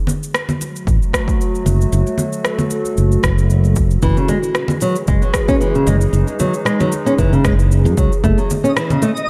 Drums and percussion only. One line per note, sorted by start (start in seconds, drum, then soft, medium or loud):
0.07 low conga medium
0.07 shaker medium
0.23 shaker soft
0.34 cross-stick medium
0.34 shaker soft
0.49 low conga medium
0.49 shaker soft
0.61 muted conga medium
0.61 shaker medium
0.76 shaker soft
0.87 kick loud
0.87 shaker soft
1.02 shaker soft
1.13 kick medium
1.13 cross-stick medium
1.13 shaker medium
1.28 kick medium
1.28 shaker soft
1.41 shaker soft
1.55 shaker soft
1.66 low conga medium
1.66 shaker medium
1.81 shaker soft
1.93 shaker soft
2.07 high conga medium
2.07 shaker soft
2.18 low conga medium
2.18 shaker medium
2.33 shaker soft
2.45 cross-stick medium
2.45 shaker soft
2.58 low conga medium
2.58 shaker soft
2.71 muted conga soft
2.71 shaker medium
2.85 high conga soft
2.85 shaker soft
2.97 shaker soft
3.12 shaker soft
3.23 kick loud
3.23 cross-stick medium
3.23 muted conga medium
3.23 shaker medium
3.38 shaker soft
3.50 shaker soft
3.64 high conga medium
3.64 shaker soft
3.76 kick loud
3.76 shaker medium
3.91 shaker soft
4.02 kick loud
4.02 shaker soft
4.17 shaker soft
4.28 low conga loud
4.28 shaker medium
4.43 shaker soft
4.55 cross-stick medium
4.55 shaker soft
4.68 low conga loud
4.68 shaker soft
4.80 muted conga medium
4.80 shaker medium
4.96 shaker soft
5.08 kick loud
5.08 shaker soft
5.22 shaker soft
5.34 kick medium
5.34 cross-stick medium
5.34 shaker medium
5.49 kick loud
5.49 shaker soft
5.61 shaker soft
5.75 shaker soft
5.87 low conga medium
5.87 shaker medium
6.01 shaker soft
6.13 shaker soft
6.28 high conga medium
6.28 shaker soft
6.40 low conga medium
6.40 shaker medium
6.54 shaker soft
6.66 cross-stick medium
6.66 shaker soft
6.80 low conga medium
6.80 shaker soft
6.92 muted conga soft
6.92 shaker medium
7.07 high conga soft
7.07 shaker soft
7.19 kick medium
7.19 shaker soft
7.33 shaker soft
7.45 kick loud
7.45 cross-stick medium
7.45 muted conga medium
7.45 shaker medium
7.59 shaker soft
7.72 shaker soft
7.86 high conga medium
7.86 shaker soft
7.97 kick loud
7.97 shaker medium
8.12 shaker soft
8.24 kick loud
8.24 shaker soft
8.38 shaker soft
8.50 low conga medium
8.50 shaker medium
8.65 shaker soft
8.77 cross-stick medium
8.77 shaker soft
8.90 low conga medium
8.90 shaker soft
9.02 muted conga soft
9.02 shaker medium
9.17 shaker soft